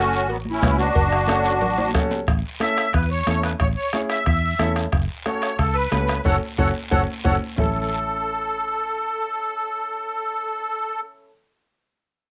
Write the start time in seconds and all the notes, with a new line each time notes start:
Already playing: F#1 C#4 F#4 A4
0.13 short guiro
0.29 A1 F#3 B3 F#4, cowbell, long guiro
0.45 high conga
0.50 C#4 E4
0.61 C#2 C#4 F#4 B4, bombo low, bombo rim, cowbell, high conga, short guiro
0.78 D4 F#4, short guiro
0.95 F#1, bombo low, cowbell, long guiro
1.12 bombo rim
1.27 C#4 F#4 A4, bombo rim, cowbell, high conga, short guiro
1.44 short guiro
1.61 A1, cowbell, low conga, long guiro
1.78 high conga, high timbale
1.89 low timbale
1.94 C#2 C#4 F#4 A4, bombo low, bombo rim, cowbell, high conga, low conga, short guiro
2.00 low timbale
2.11 low timbale, short guiro
2.27 A1, bombo low, bombo rim, high conga, high timbale, long guiro
2.60 C#4 E4 A4 E5, bombo rim, high conga, high timbale, short guiro
2.77 bombo rim, high timbale, short guiro
2.93 E2 B4, bombo low, bombo rim, high conga, high timbale, long guiro
3.11 C#5
3.27 E2 C#4 E4 A4, bombo rim, high conga, high timbale, short guiro
3.43 B4, bombo rim, high timbale, short guiro
3.60 A1 C#5, bombo low, bombo rim, high conga, high timbale, long guiro
3.76 C#5
3.93 C#4 E4 G#4 C#5, bombo rim, high conga, high timbale, short guiro
4.09 E5, bombo rim, high timbale, short guiro
4.26 E2, bombo low, bombo rim, high timbale, long guiro
4.59 E2 C#4 E4 A4, bombo rim, high conga, high timbale, short guiro
4.76 bombo rim, high timbale, short guiro
4.92 F#1, bombo low, bombo rim, high conga, high timbale, long guiro
5.25 C#4 F#4 A4 C#5, bombo rim, high conga, high timbale, short guiro
5.42 bombo rim, high timbale, short guiro
5.58 C#2 A4, bombo low, bombo rim, high conga, high timbale, long guiro
5.74 B4
5.91 C#2 C#4 F#4 A4, bombo rim, high conga, high timbale, low timbale, short guiro
6.08 bombo rim, high timbale, short guiro
6.24 F#1 C#4 F#4 A4 C#5 F#5, bombo low, high conga, high timbale, long guiro
6.58 F#1 C#4 F#4 A4 C#5 F#5, bombo low, high conga, high timbale, long guiro
6.91 F#1 C#4 F#4 A4 C#5 F#5, bombo low, high conga, high timbale, long guiro
7.24 F#1 C#4 F#4 A4 C#5 F#5, bombo low, high conga, high timbale
7.56 A1 C#4 E4 A4, bombo low, low conga, low timbale, long guiro
7.60 A4